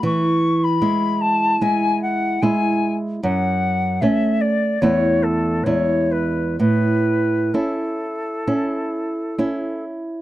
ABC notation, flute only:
X:1
M:4/4
L:1/16
Q:1/4=74
K:A
V:1 name="Flute"
c'3 b3 a2 g2 f2 g3 z | f4 e2 d2 c2 A2 c2 B2 | B4 A8- A2 z2 |]